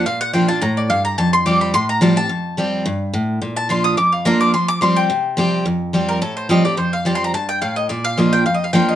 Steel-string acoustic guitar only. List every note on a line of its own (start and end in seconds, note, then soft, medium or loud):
0.06 0.59 A#2 medium
0.33 0.48 F3 medium
0.33 0.48 A#3 medium
0.33 0.49 D4 medium
0.33 0.48 F4 medium
0.49 0.62 D4 soft
0.49 0.61 F4 medium
0.62 0.89 A2 loud
0.90 1.16 G2 medium
1.18 1.71 F2 medium
1.46 1.72 F3 medium
1.46 1.73 G3 medium
1.46 1.73 C4 medium
1.46 1.73 G4 loud
1.74 2.27 A2 loud
2.01 2.16 F3 loud
2.01 2.16 G3 loud
2.01 2.17 C4 loud
2.01 2.15 G4 loud
2.16 2.30 C4 soft
2.16 2.29 G4 medium
2.29 2.83 F2 medium
2.57 2.84 F3 medium
2.57 2.85 G3 medium
2.57 2.85 C4 medium
2.57 2.85 G4 medium
2.86 3.12 G2 loud
3.14 3.40 A2 medium
3.42 3.95 A#2 medium
3.69 3.96 F3 medium
3.69 3.97 A#3 medium
3.69 3.97 D4 medium
3.69 3.97 F4 loud
3.98 4.51 F2 loud
4.25 4.52 F3 loud
4.25 4.53 A#3 loud
4.25 4.53 D4 loud
4.25 4.53 F4 loud
4.54 4.80 F3 medium
4.81 5.08 F3 medium
4.81 5.09 G3 medium
4.81 5.09 C4 medium
4.81 5.09 G4 medium
5.10 5.63 C3 medium
5.37 5.64 F3 loud
5.37 5.64 G3 medium
5.37 5.65 C4 loud
5.37 5.65 G4 loud
5.66 6.19 F2 medium
5.93 6.20 F3 medium
5.93 6.21 G3 medium
5.93 6.21 C4 medium
5.93 6.21 G4 medium
6.22 6.75 A2 loud
6.49 6.64 F3 loud
6.49 6.64 G3 medium
6.49 6.65 C4 loud
6.49 6.63 G4 loud
6.64 6.78 C4 soft
6.64 6.77 G4 medium
6.77 7.31 F2 medium
7.05 7.32 F3 medium
7.05 7.33 G3 medium
7.05 7.33 C4 medium
7.05 7.33 G4 medium
7.34 7.61 G2 medium
7.62 7.89 A2 medium
7.90 8.43 A#2 medium
8.17 8.44 F3 medium
8.17 8.45 A#3 medium
8.17 8.45 D4 medium
8.17 8.45 F4 medium
8.46 8.95 F2 medium
8.73 8.95 F3 loud
8.73 8.95 A#3 loud
8.73 8.95 D4 loud
8.73 8.95 F4 loud